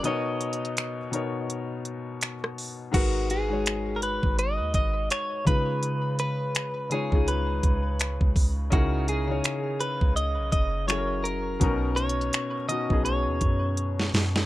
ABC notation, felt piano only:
X:1
M:4/4
L:1/16
Q:"Swing 16ths" 1/4=83
K:G#m
V:1 name="Felt piano"
[B,,B,DAc]4- [B,,B,DAc] z [B,,B,DAc]6- [B,,B,DAc] z3 | [G,,G,FAB]2 z [G,,G,FBc]6- [G,,G,FBc] z4 [C,G,D^EB]2- | [C,G,D^EB]4- [C,G,DEB] z [C,G,DEc] [C,G,DEG]6- [C,G,DEG] z2 | [C,CDEGA]2 z [C,CDEGc]6- [C,CDEGc] z2 [F,CEG=A^A]3 z |
[B,,B,CDA]4- [B,,B,CDA] z [B,,B,CDF] [B,,B,CDG]6- [B,,B,CDG] z2 |]